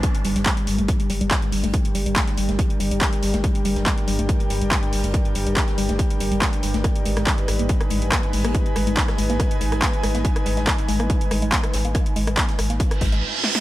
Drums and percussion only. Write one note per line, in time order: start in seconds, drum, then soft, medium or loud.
0.03 kick loud
0.03 closed hi-hat medium
0.15 closed hi-hat medium
0.24 closed hi-hat medium
0.24 open hi-hat loud
0.36 snare soft
0.36 closed hi-hat medium
0.46 kick loud
0.46 snare loud
0.46 clap loud
0.46 closed hi-hat loud
0.46 closed hi-hat medium
0.57 closed hi-hat medium
0.67 closed hi-hat medium
0.67 open hi-hat medium
0.78 closed hi-hat medium
0.88 kick loud
0.88 closed hi-hat loud
0.88 closed hi-hat medium
1.00 closed hi-hat medium
1.10 closed hi-hat medium
1.10 open hi-hat loud
1.21 closed hi-hat medium
1.31 kick loud
1.31 snare loud
1.31 clap loud
1.31 closed hi-hat loud
1.31 closed hi-hat medium
1.42 closed hi-hat medium
1.52 open hi-hat medium
1.64 closed hi-hat medium
1.73 kick loud
1.73 closed hi-hat medium
1.73 closed hi-hat loud
1.85 closed hi-hat medium
1.95 closed hi-hat medium
1.95 open hi-hat loud
2.06 closed hi-hat medium
2.16 kick loud
2.16 snare loud
2.16 clap loud
2.16 closed hi-hat loud
2.16 closed hi-hat medium
2.27 snare medium
2.27 closed hi-hat medium
2.37 closed hi-hat medium
2.37 open hi-hat loud
2.49 snare soft
2.49 closed hi-hat medium
2.59 kick loud
2.59 closed hi-hat medium
2.70 closed hi-hat medium
2.80 closed hi-hat medium
2.80 open hi-hat loud
2.91 closed hi-hat medium
2.91 closed hi-hat soft
3.01 kick loud
3.01 snare loud
3.01 clap loud
3.01 closed hi-hat medium
3.01 closed hi-hat loud
3.13 closed hi-hat medium
3.23 snare soft
3.23 closed hi-hat medium
3.23 open hi-hat medium
3.33 snare medium
3.33 closed hi-hat medium
3.44 kick loud
3.44 closed hi-hat medium
3.55 closed hi-hat medium
3.65 closed hi-hat medium
3.65 open hi-hat loud
3.76 snare soft
3.76 closed hi-hat medium
3.86 kick loud
3.86 snare loud
3.86 clap loud
3.86 closed hi-hat medium
3.98 closed hi-hat medium
4.08 closed hi-hat medium
4.08 open hi-hat loud
4.19 closed hi-hat medium
4.29 kick loud
4.29 closed hi-hat medium
4.40 closed hi-hat medium
4.50 closed hi-hat medium
4.50 open hi-hat loud
4.61 closed hi-hat medium
4.71 kick loud
4.71 snare loud
4.71 clap loud
4.71 closed hi-hat medium
4.83 closed hi-hat medium
4.93 open hi-hat loud
4.93 open hi-hat medium
5.04 closed hi-hat medium
5.14 kick loud
5.14 closed hi-hat medium
5.25 closed hi-hat medium
5.35 closed hi-hat medium
5.35 open hi-hat loud
5.47 closed hi-hat medium
5.56 kick loud
5.56 snare loud
5.56 clap loud
5.56 closed hi-hat medium
5.68 snare soft
5.68 closed hi-hat soft
5.78 closed hi-hat medium
5.78 open hi-hat loud
5.89 snare soft
5.89 closed hi-hat medium
5.99 kick loud
5.99 closed hi-hat medium
6.10 closed hi-hat medium
6.20 closed hi-hat medium
6.20 open hi-hat loud
6.32 closed hi-hat soft
6.42 kick loud
6.42 snare loud
6.42 clap loud
6.42 closed hi-hat medium
6.53 closed hi-hat medium
6.63 snare soft
6.63 closed hi-hat medium
6.63 open hi-hat medium
6.74 snare medium
6.74 closed hi-hat medium
6.84 kick loud
6.84 cross-stick medium
6.84 closed hi-hat medium
6.96 closed hi-hat medium
7.05 closed hi-hat medium
7.05 open hi-hat loud
7.16 cross-stick medium
7.16 snare soft
7.16 closed hi-hat medium
7.26 kick loud
7.26 snare loud
7.26 clap loud
7.26 closed hi-hat medium
7.38 closed hi-hat soft
7.48 cross-stick medium
7.48 closed hi-hat medium
7.48 open hi-hat loud
7.59 closed hi-hat medium
7.69 kick loud
7.69 closed hi-hat medium
7.81 cross-stick medium
7.81 closed hi-hat soft
7.90 closed hi-hat medium
7.90 open hi-hat loud
8.02 closed hi-hat soft
8.12 kick loud
8.12 cross-stick medium
8.12 snare loud
8.12 clap loud
8.12 closed hi-hat medium
8.23 closed hi-hat soft
8.33 open hi-hat medium
8.45 cross-stick medium
8.45 closed hi-hat medium
8.55 kick loud
8.55 closed hi-hat medium
8.66 closed hi-hat soft
8.76 cross-stick medium
8.76 closed hi-hat medium
8.76 open hi-hat loud
8.87 closed hi-hat medium
8.97 kick loud
8.97 snare loud
8.97 clap loud
8.97 closed hi-hat medium
9.08 cross-stick medium
9.08 snare medium
9.08 closed hi-hat soft
9.18 closed hi-hat medium
9.18 open hi-hat medium
9.29 snare soft
9.29 closed hi-hat soft
9.39 kick loud
9.39 cross-stick medium
9.39 closed hi-hat medium
9.51 closed hi-hat medium
9.61 closed hi-hat medium
9.61 open hi-hat loud
9.72 cross-stick medium
9.72 closed hi-hat soft
9.82 kick loud
9.82 snare loud
9.82 clap loud
9.82 closed hi-hat medium
9.82 closed hi-hat loud
9.93 closed hi-hat medium
10.03 cross-stick medium
10.03 snare soft
10.03 closed hi-hat medium
10.03 open hi-hat medium
10.14 snare medium
10.14 closed hi-hat medium
10.25 kick loud
10.25 closed hi-hat medium
10.36 cross-stick medium
10.36 closed hi-hat medium
10.46 closed hi-hat medium
10.46 open hi-hat medium
10.57 snare soft
10.57 closed hi-hat medium
10.67 kick loud
10.67 cross-stick medium
10.67 snare loud
10.67 clap loud
10.67 closed hi-hat medium
10.78 closed hi-hat medium
10.88 closed hi-hat medium
10.88 open hi-hat medium
11.00 cross-stick medium
11.00 closed hi-hat medium
11.10 kick loud
11.10 closed hi-hat medium
11.21 closed hi-hat medium
11.31 cross-stick medium
11.31 closed hi-hat medium
11.31 open hi-hat loud
11.42 closed hi-hat medium
11.52 kick loud
11.52 snare loud
11.52 clap loud
11.52 closed hi-hat medium
11.63 cross-stick medium
11.63 closed hi-hat medium
11.73 snare loud
11.73 closed hi-hat medium
11.73 open hi-hat medium
11.85 closed hi-hat medium
11.95 kick loud
11.95 cross-stick medium
11.95 closed hi-hat medium
12.06 closed hi-hat medium
12.16 closed hi-hat medium
12.16 open hi-hat loud
12.27 cross-stick medium
12.27 closed hi-hat medium
12.37 kick loud
12.37 snare loud
12.37 clap loud
12.37 closed hi-hat medium
12.37 closed hi-hat loud
12.49 snare medium
12.49 closed hi-hat medium
12.59 cross-stick medium
12.59 closed hi-hat medium
12.59 open hi-hat medium
12.70 snare soft
12.70 closed hi-hat medium
12.80 kick loud
12.80 closed hi-hat medium
12.91 cross-stick medium
12.91 closed hi-hat medium
13.01 kick medium
13.01 closed hi-hat medium
13.01 open hi-hat loud
13.12 closed hi-hat soft
13.44 snare medium
13.55 snare medium